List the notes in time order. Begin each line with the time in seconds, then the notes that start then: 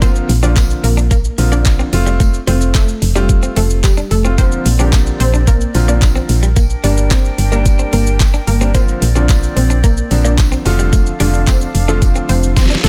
Already playing: G1
0.02 D3 F3 A#3 C4 F4 C5, kick, closed hi-hat, tambourine, shaker
0.16 shaker
0.29 A#1, muted clean electric guitar stroke, open hi-hat, tambourine, shaker
0.43 D3 F3 A#3 C4 D4 F4 D5, shaker
0.56 A#3, kick, clap, closed hi-hat, tambourine, shaker
0.70 shaker
0.84 A#1 A#3 A#4, muted clean electric guitar stroke, open hi-hat, tambourine, shaker
0.97 D4, shaker
1.11 A#3 A#4, kick, closed hi-hat, tambourine, shaker
1.25 shaker
1.38 A#1 D3 F3 A#3 C4 F4, muted clean electric guitar stroke, open hi-hat, tambourine, shaker
1.52 A#3 D4 D5, shaker
1.66 kick, clap, closed hi-hat, tambourine, shaker
1.79 C4, shaker
1.92 F1 A3 C4 F4, muted clean electric guitar stroke, open hi-hat, tambourine, shaker
2.06 G3, shaker
2.20 A3, kick, closed hi-hat, tambourine, shaker
2.34 shaker
2.47 F1 G3 A3 C4 F4 C5, open hi-hat, tambourine, shaker
2.61 muted clean electric guitar stroke, shaker
2.75 A3 A4, kick, clap, closed hi-hat, tambourine, shaker
2.88 shaker
3.02 F1, muted clean electric guitar stroke, open hi-hat, tambourine, shaker
3.15 G3 A3 C4 D4 F4 G4, shaker
3.29 muted clean electric guitar stroke, kick, closed hi-hat, shaker
3.43 C4, shaker
3.56 F1 A3 C4 A4, open hi-hat, tambourine, shaker
3.70 shaker
3.84 G3 G4, kick, clap, closed hi-hat, tambourine, shaker
3.97 D4, shaker
4.11 F1 A3 A4, muted clean electric guitar stroke, open hi-hat, tambourine, shaker
4.24 A3 C4 F4, shaker
4.38 D3 F3 A#3 C4 A#4 C5 D5, kick, closed hi-hat, tambourine, shaker
4.52 shaker
4.66 A#1, muted clean electric guitar stroke, open hi-hat, tambourine, shaker
4.79 D3 F3 A#3 C4 D4 G4 D5, shaker
4.93 A#3, kick, clap, closed hi-hat, tambourine, shaker
5.07 shaker
5.20 A#1 C4 C5, muted clean electric guitar stroke, open hi-hat, tambourine, shaker
5.34 D4, shaker
5.47 A#3 A#4, kick, closed hi-hat, tambourine, shaker
5.61 shaker
5.74 A#1 D3 F3 A#3 C4 F4, muted clean electric guitar stroke, open hi-hat, tambourine, shaker
5.88 A#3 D4 D5, shaker
6.02 kick, clap, closed hi-hat, tambourine, shaker
6.16 C4, shaker
6.29 A#1, muted clean electric guitar stroke, open hi-hat, tambourine, shaker
6.43 G3, shaker
6.56 A#3 D4 G5, kick, closed hi-hat, tambourine, shaker
6.70 shaker
6.83 G1 G3 A#3 D4 D5, open hi-hat, tambourine, shaker
6.97 muted clean electric guitar stroke, shaker
7.11 A#3 C4 C5, kick, clap, closed hi-hat, tambourine, shaker
7.25 shaker
7.38 G1, muted clean electric guitar stroke, open hi-hat, tambourine, shaker
7.52 G3 A#3 D4 A#4, shaker
7.66 muted clean electric guitar stroke, kick, closed hi-hat, tambourine, shaker
7.79 C4, shaker
7.93 G1 A#3 C4 A#4, open hi-hat, tambourine, shaker
8.07 shaker
8.20 kick, clap, closed hi-hat, tambourine, shaker
8.34 D4, shaker
8.47 G1 A#3 A#4, muted clean electric guitar stroke, open hi-hat, tambourine, shaker
8.61 G3 A#3 C4 D4, shaker
8.74 D3 F3 A#3 C4 F4 C5 D5, kick, closed hi-hat, tambourine, shaker
8.88 shaker
9.02 A#1, muted clean electric guitar stroke, open hi-hat, tambourine, shaker
9.15 D3 F3 A#3 C4 D4 F4 D5, shaker
9.29 A#3, kick, clap, closed hi-hat, tambourine, shaker
9.43 shaker
9.56 A#1 C4 C5, muted clean electric guitar stroke, open hi-hat, tambourine, shaker
9.70 D4, shaker
9.84 A#3 A#4, kick, closed hi-hat, tambourine, shaker
9.97 shaker
10.11 A#1 D3 F3 A#3 C4 D4, muted clean electric guitar stroke, open hi-hat, tambourine, shaker
10.25 A#3 D4 D5, shaker
10.38 kick, clap, closed hi-hat, tambourine, shaker
10.52 C4, shaker
10.65 F1 D3 F3 A3 C4 D4 F4 A4 F5, muted clean electric guitar stroke, open hi-hat, tambourine, shaker
10.79 G3, shaker
10.93 A3, kick, closed hi-hat, tambourine, shaker
11.06 shaker
11.20 F1 D3 F3 G3 A3 C4 D4 F4 D5, open hi-hat, tambourine, shaker
11.34 muted clean electric guitar stroke, shaker
11.47 A3 C4 C5, kick, clap, closed hi-hat, tambourine, shaker
11.61 shaker
11.75 F1, muted clean electric guitar stroke, open hi-hat, tambourine, shaker
11.88 D3 F3 A3 C4 D4 F4 A4, shaker
12.02 muted clean electric guitar stroke, kick, closed hi-hat, tambourine, shaker
12.15 C4, shaker
12.29 F1 C4 C5, open hi-hat, tambourine, shaker
12.43 shaker
12.56 C4 C5, kick, snare, closed hi-hat, tambourine, shaker
12.66 snare
12.70 D4, shaker
12.75 snare
12.84 F1 A3 A4, muted clean electric guitar stroke, snare, open hi-hat, tambourine, shaker